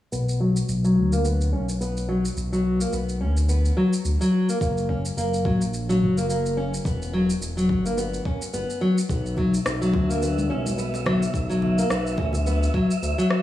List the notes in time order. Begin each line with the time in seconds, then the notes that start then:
0.12 B1 B3, shaker
0.29 shaker
0.40 F#3
0.57 shaker
0.69 B1, shaker
0.84 F#3, shaker
0.97 D2
1.12 A#3, shaker
1.24 B3, shaker
1.41 shaker
1.53 B1 C#4
1.69 shaker
1.81 B3, shaker
1.97 shaker
2.09 F#3
2.25 shaker
2.37 B1, shaker
2.52 F#3, shaker
2.80 A#3, shaker
2.93 B1 B3, shaker
3.09 shaker
3.21 D2 C#4
3.37 shaker
3.49 B3, shaker
3.65 shaker
3.77 F#3
3.93 shaker
4.05 D2, shaker
4.21 F#3, shaker
4.49 A#3, shaker
4.61 F#1 A#3, kick, shaker
4.77 shaker
4.89 C#4, kick
5.05 shaker
5.17 F#1 A#3, shaker
5.34 shaker
5.45 A#1 F#3, kick
5.62 shaker
5.74 shaker
5.89 F#3, shaker
6.01 F#1
6.17 A#3, shaker
6.29 A#3, shaker
6.46 shaker
6.57 C#4
6.74 shaker
6.85 E1 B3, kick, shaker
7.02 shaker
7.13 F#3
7.30 shaker
7.41 E1, shaker
7.57 F#3, shaker
7.69 G1, kick
7.85 A#3, shaker
7.97 B3, shaker
8.14 shaker
8.25 C#4, kick
8.42 shaker
8.54 G1 B3, shaker
8.70 shaker
8.81 F#3
8.98 shaker
9.09 B1 B3 E5, kick, shaker
9.26 shaker
9.37 F#3, kick, low conga
9.54 shaker
9.66 B1, cross-stick, high bongo, shaker
9.81 F#3, shaker
9.94 D2, kick, high bongo
10.10 A#3, shaker
10.22 B3, shaker
10.38 high conga, shaker
10.50 B1 C#4
10.66 high conga, shaker
10.78 B3, shaker
10.94 high bongo, shaker
11.06 F#3, cross-stick, low conga
11.23 shaker
11.34 B1, kick, shaker
11.50 F#3, shaker
11.62 low conga
11.78 A#3, shaker
11.90 B1 B3, cross-stick, high bongo, shaker
12.07 shaker
12.17 D2 C#4, kick, high bongo
12.33 low conga, shaker
12.46 B3, shaker
12.63 shaker
12.74 F#3, kick
12.91 shaker
13.02 D2, shaker
13.18 F#3, shaker
13.30 cross-stick